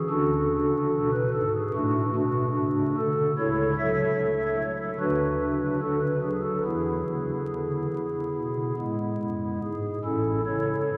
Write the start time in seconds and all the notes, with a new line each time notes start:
0.10 D2 D3 D4 F#4 A4
0.51 C#3
0.93 B2
1.13 B4
1.34 G#2 A4
1.54 G#4
1.74 A2 A3 D4 F#4
2.15 B2 A3 D4 F#4
2.57 C#3
2.97 D3 A4
3.38 C#2 C#3 E4 A4 C#5
3.79 F#3 A4 C#5 E5
4.20 A3
4.59 F#3 C#5
4.80 A4
5.00 D2 D3 D4 F#4 B4
5.40 C#3
5.82 D3 D4 F#4 A4
6.01 B4
6.22 F#3 G#4
6.44 A4
6.64 E2 E3 B3 E4 G#4
7.07 C#3
7.50 D3
7.93 C#3
8.35 B2
8.78 A2 G#3 B3 E4
9.19 F#2
9.62 G#2 G#4
10.04 A1 A2 C#4 E4 A4
10.46 C#3 E4 A4 C#5
10.88 E3